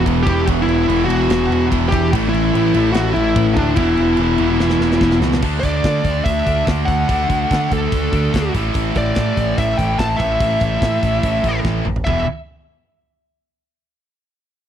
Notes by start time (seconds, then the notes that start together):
Already playing: E2 B2 E3
0.05 E1 E2 B2 E3, kick, crash
0.23 E1 E2 B2 E3 G4, kick, crash
0.27 B2 E3
0.46 E1 E2 B2 E3, kick, crash
0.62 E4
0.66 E1, crash
0.88 E1 E2 B2 E3, crash
0.92 E3
1.05 E1 E2 B2 F#4
1.09 E3, crash
1.29 E1 E2 B2 E3, snare, crash
1.50 E1, crash
1.70 E1 E2 B2 E3, kick, crash
1.89 E1 E2 G4, kick
1.93 B2 E3, crash
2.11 A1 A2 E3 A3, kick, crash
2.29 A1 E4
2.34 crash
2.54 A1 A2 E3 A3, crash
2.74 A1 A2 E3 A3, crash
2.92 A1 A2 F#4, snare, crash
2.96 E3 A3
3.14 A1 E4, crash
3.36 A1 A2 E3 A3, kick, crash
3.53 D2 D4, kick, crash
3.57 A2 E3 A3
3.75 E1 E2 B2 E3 E4, kick, crash
3.80 E3
3.97 E1, crash
4.17 E1 E2 B2 E3, crash
4.38 E1 E2 B2 E3, crash
4.42 E2
4.59 E1 E2 B2 E3, snare
4.70 snare
4.79 E1, snare
4.92 snare
5.01 E1 E2 B2 E3, kick, snare
5.11 snare
5.20 C#2 E2 B2 E3, snare
5.33 snare
5.42 D2 D3 A3, kick, crash
5.46 D4
5.60 D2 D5, kick, open hi-hat
5.84 D3, kick, snare, open hi-hat
6.04 D2, kick, open hi-hat
6.25 D2 E5, kick, open hi-hat
6.46 D2 A3 D4, kick, open hi-hat
6.50 D3
6.67 D2 D3 A3 D4, kick, snare, open hi-hat
6.86 D2 F#5, kick, open hi-hat
7.09 D2 D3 A3 D4, kick, open hi-hat
7.29 D2, kick, open hi-hat
7.51 D3, kick, snare, open hi-hat
7.71 D2 A4, kick, open hi-hat
7.92 D2, kick, open hi-hat
8.12 D2 D3 A3 D4, kick, open hi-hat
8.34 D2 D3 A3 D4, kick, snare, open hi-hat
8.54 A1 A2 E3 A3, kick, open hi-hat
8.74 A1, kick, open hi-hat
8.95 A1 D5, kick, open hi-hat
9.15 A2, kick, snare, open hi-hat
9.37 A1, kick, open hi-hat
9.58 A1 A2 E3 A3 E5, kick, open hi-hat
9.77 A1 A3 G5, kick, open hi-hat
9.82 A2 E3
9.99 A1 A5, kick, snare, open hi-hat
10.17 A1 E5, kick, open hi-hat
10.21 A2 E3 A3
10.40 A1, kick, open hi-hat
10.60 A1, kick, open hi-hat
10.82 A2, kick, snare, open hi-hat
11.03 A1, kick, open hi-hat
11.23 A1 A2 E3, kick, open hi-hat
11.28 A3
11.43 A1 E3 A3, kick, open hi-hat
11.48 A2
11.64 A1, kick, snare
11.85 A1, mid tom
11.96 floor tom
12.05 E1 E2 B2 E5, kick, floor tom
12.09 E3